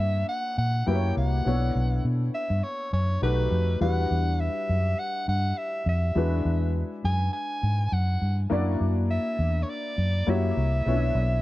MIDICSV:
0, 0, Header, 1, 4, 480
1, 0, Start_track
1, 0, Tempo, 587602
1, 1193, Time_signature, 4, 2, 24, 8
1, 9328, End_track
2, 0, Start_track
2, 0, Title_t, "Soprano saxophone"
2, 0, Program_c, 0, 64
2, 0, Note_on_c, 0, 76, 102
2, 232, Note_off_c, 0, 76, 0
2, 237, Note_on_c, 0, 78, 110
2, 458, Note_off_c, 0, 78, 0
2, 475, Note_on_c, 0, 78, 106
2, 711, Note_on_c, 0, 79, 104
2, 723, Note_off_c, 0, 78, 0
2, 952, Note_off_c, 0, 79, 0
2, 961, Note_on_c, 0, 78, 103
2, 1666, Note_off_c, 0, 78, 0
2, 1916, Note_on_c, 0, 76, 99
2, 2151, Note_on_c, 0, 73, 93
2, 2163, Note_off_c, 0, 76, 0
2, 2392, Note_off_c, 0, 73, 0
2, 2397, Note_on_c, 0, 73, 90
2, 2618, Note_off_c, 0, 73, 0
2, 2640, Note_on_c, 0, 71, 94
2, 3084, Note_off_c, 0, 71, 0
2, 3116, Note_on_c, 0, 78, 107
2, 3597, Note_on_c, 0, 76, 99
2, 3609, Note_off_c, 0, 78, 0
2, 4078, Note_on_c, 0, 78, 105
2, 4090, Note_off_c, 0, 76, 0
2, 4316, Note_off_c, 0, 78, 0
2, 4320, Note_on_c, 0, 78, 104
2, 4559, Note_on_c, 0, 76, 95
2, 4571, Note_off_c, 0, 78, 0
2, 4796, Note_off_c, 0, 76, 0
2, 4809, Note_on_c, 0, 76, 90
2, 5510, Note_off_c, 0, 76, 0
2, 5760, Note_on_c, 0, 80, 113
2, 5980, Note_off_c, 0, 80, 0
2, 5992, Note_on_c, 0, 80, 109
2, 6478, Note_on_c, 0, 78, 90
2, 6491, Note_off_c, 0, 80, 0
2, 6845, Note_off_c, 0, 78, 0
2, 7439, Note_on_c, 0, 76, 109
2, 7864, Note_on_c, 0, 73, 73
2, 7876, Note_off_c, 0, 76, 0
2, 7923, Note_on_c, 0, 74, 106
2, 7935, Note_off_c, 0, 73, 0
2, 8410, Note_on_c, 0, 76, 101
2, 8423, Note_off_c, 0, 74, 0
2, 9328, Note_off_c, 0, 76, 0
2, 9328, End_track
3, 0, Start_track
3, 0, Title_t, "Grand piano"
3, 0, Program_c, 1, 0
3, 0, Control_c, 1, 64, 127
3, 0, Note_on_c, 1, 58, 64
3, 0, Note_on_c, 1, 62, 64
3, 0, Note_on_c, 1, 64, 60
3, 0, Note_on_c, 1, 66, 60
3, 0, Note_on_c, 1, 73, 74
3, 681, Note_off_c, 1, 58, 0
3, 683, Note_off_c, 1, 62, 0
3, 686, Note_off_c, 1, 64, 0
3, 688, Note_off_c, 1, 66, 0
3, 691, Note_off_c, 1, 73, 0
3, 706, Note_on_c, 1, 58, 68
3, 710, Note_on_c, 1, 64, 60
3, 711, Note_on_c, 1, 66, 62
3, 715, Note_on_c, 1, 67, 62
3, 719, Note_on_c, 1, 71, 60
3, 722, Control_c, 1, 64, 0
3, 772, Note_on_c, 1, 73, 77
3, 773, Note_off_c, 1, 71, 0
3, 849, Control_c, 1, 64, 127
3, 1182, Note_off_c, 1, 64, 0
3, 1185, Note_on_c, 1, 59, 62
3, 1189, Note_off_c, 1, 58, 0
3, 1191, Note_off_c, 1, 73, 0
3, 1191, Note_on_c, 1, 62, 59
3, 1192, Note_off_c, 1, 66, 0
3, 1194, Note_off_c, 1, 67, 0
3, 1194, Note_on_c, 1, 64, 58
3, 1201, Note_on_c, 1, 69, 58
3, 1202, Control_c, 1, 64, 0
3, 1204, Note_on_c, 1, 73, 74
3, 1347, Control_c, 1, 64, 127
3, 2600, Note_off_c, 1, 59, 0
3, 2603, Note_off_c, 1, 62, 0
3, 2605, Note_off_c, 1, 64, 0
3, 2609, Note_off_c, 1, 69, 0
3, 2610, Note_off_c, 1, 73, 0
3, 2628, Note_on_c, 1, 63, 61
3, 2629, Note_on_c, 1, 57, 68
3, 2631, Note_on_c, 1, 66, 62
3, 2635, Note_on_c, 1, 67, 62
3, 2640, Note_on_c, 1, 71, 71
3, 2645, Control_c, 1, 64, 0
3, 2810, Control_c, 1, 64, 127
3, 3107, Note_on_c, 1, 55, 61
3, 3109, Note_off_c, 1, 66, 0
3, 3111, Note_off_c, 1, 57, 0
3, 3111, Note_off_c, 1, 63, 0
3, 3113, Note_on_c, 1, 62, 61
3, 3114, Note_off_c, 1, 67, 0
3, 3115, Note_off_c, 1, 71, 0
3, 3118, Note_on_c, 1, 64, 61
3, 3122, Control_c, 1, 64, 0
3, 3122, Note_on_c, 1, 66, 58
3, 3127, Note_on_c, 1, 71, 74
3, 3274, Control_c, 1, 64, 127
3, 4998, Note_off_c, 1, 55, 0
3, 5000, Note_off_c, 1, 62, 0
3, 5003, Note_off_c, 1, 64, 0
3, 5005, Note_off_c, 1, 66, 0
3, 5008, Note_off_c, 1, 71, 0
3, 5025, Note_on_c, 1, 56, 67
3, 5030, Note_on_c, 1, 62, 61
3, 5035, Note_on_c, 1, 64, 61
3, 5039, Note_on_c, 1, 66, 62
3, 5043, Note_on_c, 1, 71, 74
3, 5046, Control_c, 1, 64, 0
3, 5177, Control_c, 1, 64, 127
3, 6917, Note_off_c, 1, 56, 0
3, 6919, Note_off_c, 1, 62, 0
3, 6921, Note_off_c, 1, 64, 0
3, 6923, Note_off_c, 1, 66, 0
3, 6926, Note_off_c, 1, 71, 0
3, 6941, Note_on_c, 1, 58, 84
3, 6947, Note_on_c, 1, 62, 74
3, 6952, Note_on_c, 1, 64, 75
3, 6958, Note_on_c, 1, 66, 73
3, 6963, Note_on_c, 1, 74, 90
3, 6964, Control_c, 1, 64, 0
3, 7089, Control_c, 1, 64, 127
3, 8358, Note_off_c, 1, 58, 0
3, 8361, Note_off_c, 1, 62, 0
3, 8364, Note_off_c, 1, 64, 0
3, 8367, Note_off_c, 1, 66, 0
3, 8369, Note_off_c, 1, 74, 0
3, 8386, Note_on_c, 1, 58, 68
3, 8388, Note_on_c, 1, 64, 63
3, 8393, Note_on_c, 1, 66, 61
3, 8394, Note_on_c, 1, 67, 64
3, 8398, Note_on_c, 1, 73, 76
3, 8405, Control_c, 1, 64, 0
3, 8534, Control_c, 1, 64, 127
3, 8865, Note_off_c, 1, 64, 0
3, 8868, Note_on_c, 1, 59, 66
3, 8869, Note_off_c, 1, 58, 0
3, 8873, Note_off_c, 1, 66, 0
3, 8874, Note_off_c, 1, 67, 0
3, 8875, Note_off_c, 1, 73, 0
3, 8875, Note_on_c, 1, 61, 47
3, 8877, Note_on_c, 1, 64, 63
3, 8882, Control_c, 1, 64, 0
3, 8882, Note_on_c, 1, 69, 63
3, 8887, Note_on_c, 1, 73, 75
3, 8924, Note_on_c, 1, 62, 58
3, 8931, Note_off_c, 1, 61, 0
3, 9026, Control_c, 1, 64, 127
3, 9328, Note_off_c, 1, 59, 0
3, 9328, Note_off_c, 1, 62, 0
3, 9328, Note_off_c, 1, 64, 0
3, 9328, Note_off_c, 1, 69, 0
3, 9328, Note_off_c, 1, 73, 0
3, 9328, End_track
4, 0, Start_track
4, 0, Title_t, "Fingered electric bass"
4, 0, Program_c, 2, 33
4, 0, Note_on_c, 2, 43, 92
4, 186, Note_off_c, 2, 43, 0
4, 473, Note_on_c, 2, 46, 89
4, 668, Note_off_c, 2, 46, 0
4, 715, Note_on_c, 2, 42, 101
4, 909, Note_off_c, 2, 42, 0
4, 955, Note_on_c, 2, 36, 86
4, 1149, Note_off_c, 2, 36, 0
4, 1195, Note_on_c, 2, 35, 109
4, 1389, Note_off_c, 2, 35, 0
4, 1432, Note_on_c, 2, 35, 103
4, 1628, Note_off_c, 2, 35, 0
4, 1672, Note_on_c, 2, 47, 89
4, 1867, Note_off_c, 2, 47, 0
4, 2043, Note_on_c, 2, 43, 94
4, 2133, Note_off_c, 2, 43, 0
4, 2393, Note_on_c, 2, 42, 85
4, 2588, Note_off_c, 2, 42, 0
4, 2632, Note_on_c, 2, 35, 97
4, 2828, Note_off_c, 2, 35, 0
4, 2870, Note_on_c, 2, 41, 90
4, 3066, Note_off_c, 2, 41, 0
4, 3112, Note_on_c, 2, 40, 99
4, 3307, Note_off_c, 2, 40, 0
4, 3356, Note_on_c, 2, 40, 89
4, 3656, Note_off_c, 2, 40, 0
4, 3835, Note_on_c, 2, 42, 86
4, 4030, Note_off_c, 2, 42, 0
4, 4313, Note_on_c, 2, 43, 86
4, 4508, Note_off_c, 2, 43, 0
4, 4788, Note_on_c, 2, 41, 87
4, 4986, Note_off_c, 2, 41, 0
4, 5030, Note_on_c, 2, 40, 115
4, 5226, Note_off_c, 2, 40, 0
4, 5270, Note_on_c, 2, 40, 96
4, 5572, Note_off_c, 2, 40, 0
4, 5754, Note_on_c, 2, 42, 93
4, 5949, Note_off_c, 2, 42, 0
4, 6234, Note_on_c, 2, 44, 102
4, 6429, Note_off_c, 2, 44, 0
4, 6472, Note_on_c, 2, 42, 93
4, 6667, Note_off_c, 2, 42, 0
4, 6713, Note_on_c, 2, 43, 96
4, 6908, Note_off_c, 2, 43, 0
4, 6956, Note_on_c, 2, 42, 108
4, 7150, Note_off_c, 2, 42, 0
4, 7194, Note_on_c, 2, 42, 103
4, 7494, Note_off_c, 2, 42, 0
4, 7669, Note_on_c, 2, 40, 92
4, 7866, Note_off_c, 2, 40, 0
4, 8151, Note_on_c, 2, 42, 89
4, 8347, Note_off_c, 2, 42, 0
4, 8393, Note_on_c, 2, 42, 108
4, 8588, Note_off_c, 2, 42, 0
4, 8636, Note_on_c, 2, 36, 97
4, 8830, Note_off_c, 2, 36, 0
4, 8874, Note_on_c, 2, 35, 96
4, 9069, Note_off_c, 2, 35, 0
4, 9108, Note_on_c, 2, 35, 100
4, 9328, Note_off_c, 2, 35, 0
4, 9328, End_track
0, 0, End_of_file